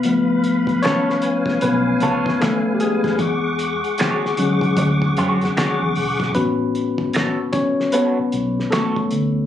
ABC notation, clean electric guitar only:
X:1
M:4/4
L:1/16
Q:"Swing 16ths" 1/4=76
K:A
V:1 name="Clean electric guitar"
z4 [B,^EAc] z4 z [B,EAc] z4 z | z4 [DFGc] z4 z [DFGc] z [DFGc] z3 | z4 [B,FAc] z3 [B,FAc] z3 [B,FAc] z3 |]